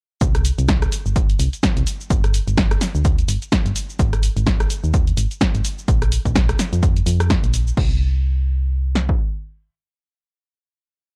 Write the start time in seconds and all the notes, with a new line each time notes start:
0.21 C2, kick, closed hi-hat, shaker
0.35 cross-stick, closed hi-hat, shaker
0.45 open hi-hat, shaker
0.59 C2, closed hi-hat, shaker
0.69 kick, snare, closed hi-hat, shaker
0.82 cross-stick, closed hi-hat, shaker
0.92 open hi-hat, shaker
1.06 G1, shaker
1.16 kick, closed hi-hat, shaker
1.30 closed hi-hat, shaker
1.39 C2, open hi-hat, shaker
1.53 closed hi-hat, shaker
1.63 kick, snare, closed hi-hat, shaker
1.77 C2, closed hi-hat, shaker
1.87 open hi-hat, shaker
2.00 shaker
2.10 G1, kick, closed hi-hat, shaker
2.24 cross-stick, closed hi-hat, shaker
2.34 open hi-hat, shaker
2.48 G1, closed hi-hat, shaker
2.58 kick, snare, closed hi-hat, shaker
2.71 cross-stick, closed hi-hat, shaker
2.81 snare, open hi-hat, shaker
2.95 D2, shaker
3.05 kick, closed hi-hat, shaker
3.18 closed hi-hat, shaker
3.28 G1, open hi-hat, shaker
3.42 closed hi-hat, shaker
3.52 kick, snare, closed hi-hat, shaker
3.66 G1, closed hi-hat, shaker
3.76 open hi-hat, shaker
3.89 shaker
3.99 G#1, kick, closed hi-hat, shaker
4.13 cross-stick, closed hi-hat, shaker
4.23 open hi-hat, shaker
4.36 G#1, closed hi-hat, shaker
4.46 kick, snare, closed hi-hat, shaker
4.60 cross-stick, closed hi-hat, shaker
4.70 open hi-hat, shaker
4.84 D#2, shaker
4.94 kick, closed hi-hat, shaker
5.07 closed hi-hat, shaker
5.17 G#1, open hi-hat, shaker
5.31 closed hi-hat, shaker
5.41 kick, snare, closed hi-hat, shaker
5.55 G#1, closed hi-hat, shaker
5.65 open hi-hat, shaker
5.78 shaker
5.88 A#1, kick, closed hi-hat, shaker
6.02 cross-stick, closed hi-hat, shaker
6.12 open hi-hat, shaker
6.25 A#1, kick, closed hi-hat, shaker
6.35 kick, snare, closed hi-hat, shaker
6.49 cross-stick, closed hi-hat, shaker
6.59 snare, open hi-hat, shaker
6.73 F2, closed hi-hat, shaker
6.83 kick, closed hi-hat, shaker
6.96 closed hi-hat, shaker
7.06 F2, open hi-hat, shaker
7.20 cross-stick, closed hi-hat, shaker
7.30 kick, snare, closed hi-hat, shaker
7.44 A#1, closed hi-hat, shaker
7.54 open hi-hat, shaker
7.67 shaker
7.77 C2, kick, crash
8.95 snare
9.09 kick